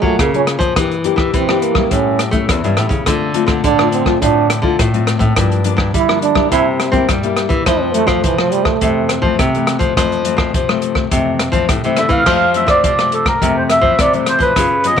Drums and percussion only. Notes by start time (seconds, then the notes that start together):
0.03 kick
0.19 kick, cross-stick, closed hi-hat
0.34 closed hi-hat
0.47 cross-stick, closed hi-hat
0.60 kick, closed hi-hat
0.76 kick, cross-stick, closed hi-hat
0.91 closed hi-hat
1.04 closed hi-hat
1.18 kick, cross-stick
1.34 kick, closed hi-hat
1.49 cross-stick
1.62 closed hi-hat
1.75 kick, cross-stick
1.91 kick, closed hi-hat
2.19 cross-stick, closed hi-hat
2.32 kick, closed hi-hat
2.49 kick, cross-stick, closed hi-hat
2.64 closed hi-hat
2.77 cross-stick, closed hi-hat
2.90 kick, closed hi-hat
3.06 kick, cross-stick, closed hi-hat
3.34 closed hi-hat
3.48 kick, cross-stick, closed hi-hat
3.64 kick, closed hi-hat
3.79 cross-stick
3.92 closed hi-hat
4.06 kick, cross-stick
4.22 kick, closed hi-hat
4.50 cross-stick, closed hi-hat
4.63 kick
4.79 kick, cross-stick, closed hi-hat
4.94 closed hi-hat
5.07 cross-stick, closed hi-hat
5.20 kick, closed hi-hat
5.36 kick, cross-stick, closed hi-hat
5.52 closed hi-hat
5.64 closed hi-hat
5.78 kick, cross-stick
5.94 kick, closed hi-hat
6.09 cross-stick
6.22 closed hi-hat
6.35 kick, cross-stick
6.52 kick, closed hi-hat
6.80 cross-stick, closed hi-hat
6.93 kick, closed hi-hat
7.09 kick, cross-stick, closed hi-hat
7.23 closed hi-hat
7.37 cross-stick, closed hi-hat
7.50 kick, closed hi-hat
7.66 kick, cross-stick, closed hi-hat
7.94 closed hi-hat
8.08 kick, cross-stick, closed hi-hat
8.24 kick, closed hi-hat
8.39 cross-stick
8.52 closed hi-hat
8.65 kick, cross-stick
8.81 kick, closed hi-hat
9.09 cross-stick, closed hi-hat
9.23 kick
9.39 kick, cross-stick, closed hi-hat
9.55 closed hi-hat
9.67 cross-stick, closed hi-hat
9.80 kick, closed hi-hat
9.97 kick, cross-stick, closed hi-hat
10.12 closed hi-hat
10.25 closed hi-hat
10.38 kick, cross-stick
10.54 kick, closed hi-hat
10.69 cross-stick
10.82 closed hi-hat
10.95 kick, cross-stick
11.11 kick, closed hi-hat
11.39 cross-stick, closed hi-hat
11.53 kick, closed hi-hat
11.69 kick, cross-stick, closed hi-hat
11.84 closed hi-hat
11.97 cross-stick, closed hi-hat
12.10 kick, closed hi-hat
12.26 kick, cross-stick, crash
12.54 closed hi-hat
12.68 kick, cross-stick, closed hi-hat
12.84 kick, closed hi-hat
12.99 cross-stick, closed hi-hat
13.12 closed hi-hat
13.26 kick, cross-stick, closed hi-hat
13.42 kick, closed hi-hat
13.70 cross-stick, closed hi-hat
13.83 kick
13.99 kick, cross-stick, closed hi-hat
14.13 closed hi-hat
14.26 cross-stick, closed hi-hat
14.40 kick, closed hi-hat
14.56 kick, cross-stick, closed hi-hat
14.84 closed hi-hat